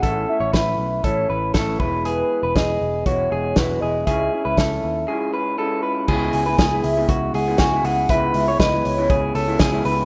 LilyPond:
<<
  \new Staff \with { instrumentName = "Soft synth lead" } { \time 4/4 \key cis \minor \tempo 4 = 119 fis''8 e''8 e''4 cis''4. r8 | b'4 dis''4 cis''4 b'8 dis''8 | e''2.~ e''8 r8 | r8 gis''4 e''4 fis''8 gis''8 fis''8 |
e''4 dis''8 cis''4. r4 | }
  \new Staff \with { instrumentName = "Clean electric guitar" } { \time 4/4 \key cis \minor a'8. cis''16 b'4 a'8 b'8 a'8 b'8 | gis'8. b'16 gis'4 fis'8 gis'8 fis'8 gis'8 | gis'8. b'16 a'4 gis'8 b'8 a'8 b'8 | gis'8. b'16 gis'4 fis'8 gis'8 fis'8 gis'8 |
b'8. cis''16 b'4 gis'8 a'8 gis'8 b'8 | }
  \new Staff \with { instrumentName = "Clean electric guitar" } { \time 4/4 \key cis \minor <a, e a cis' e'>8 <a cis' e'>4. <e a cis' e'>4 <e a cis' e'>8 <e gis b e'>8~ | <e gis b e'>2 <e gis b e'>4 <e gis b e'>4 | <cis gis cis' e'>8 <cis' e'>4. <cis gis cis' e'>4 <cis gis cis' e'>4 | <cis gis b e'>8. <gis b e'>8 <gis b e'>8 <cis gis b e'>4 <cis gis b e'>8 <cis gis b e'>8. |
<cis gis b e'>8. <gis b e'>8 <gis b e'>8 <cis gis b e'>4 <cis gis b e'>8 <cis gis b e'>8. | }
  \new Staff \with { instrumentName = "Picked electric bass" } { \clef bass \time 4/4 \key cis \minor a,,8 r16 a,,16 a,,8 b,,8 a,,8 a,,8 a,,8 e,,8~ | e,,8 r16 e,,16 e,,8 e,,8 e,,8 e,,8 e,,8 e,,8 | cis,8 r16 cis,16 cis,8 dis,8 r2 | cis,8 cis,8 cis,8 cis,8 cis,8 cis,8 cis,8 cis,8 |
cis,8 cis,8 cis,8 cis,8 cis,8 cis,8 cis,8 cis,8 | }
  \new DrumStaff \with { instrumentName = "Drums" } \drummode { \time 4/4 <hh bd>4 <hh bd sn>4 <hh bd>4 <hh bd sn>8 bd8 | hh4 <hh bd sn>4 <hh bd>4 <hh bd sn>4 | <hh bd>4 <hh bd sn>4 r4 r4 | <cymc bd>8 hho8 <hh bd sn>8 hho8 <hh bd>8 hho8 <hh bd sn>8 hho8 |
<hh bd>8 hho8 <hh bd sn>8 hho8 <hh bd>8 hho8 <hh bd sn>8 hho8 | }
>>